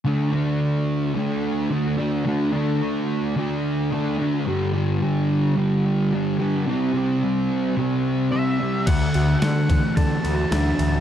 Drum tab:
CC |--------|--------|--------|--------|
RD |--------|--------|--------|--------|
SD |--------|--------|--------|--------|
BD |--------|--------|--------|--------|

CC |x-------|
RD |xxxxxxxx|
SD |--o---o-|
BD |o--oo---|